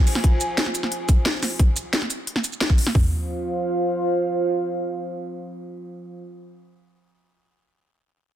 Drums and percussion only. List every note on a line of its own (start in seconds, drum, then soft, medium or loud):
0.07 open hi-hat medium
0.07 ride medium
0.07 shaker medium
0.15 snare medium
0.24 kick loud
0.24 closed hi-hat medium
0.41 closed hi-hat loud
0.41 shaker medium
0.58 snare loud
0.58 closed hi-hat medium
0.66 snare soft
0.75 closed hi-hat loud
0.75 shaker medium
0.83 snare soft
0.92 closed hi-hat medium
1.09 kick loud
1.09 closed hi-hat medium
1.09 shaker medium
1.26 snare loud
1.26 closed hi-hat medium
1.43 snare soft
1.43 open hi-hat medium
1.43 shaker medium
1.59 kick loud
1.59 closed hi-hat medium
1.76 closed hi-hat loud
1.76 shaker medium
1.93 snare loud
1.93 closed hi-hat medium
2.02 snare soft
2.10 closed hi-hat loud
2.10 shaker medium
2.27 closed hi-hat medium
2.36 snare soft
2.44 closed hi-hat loud
2.44 shaker medium
2.53 shaker soft
2.61 snare loud
2.61 closed hi-hat medium
2.70 kick loud
2.78 open hi-hat medium
2.78 shaker medium
2.87 snare medium
2.95 kick loud
2.95 floor tom loud
2.95 open hi-hat medium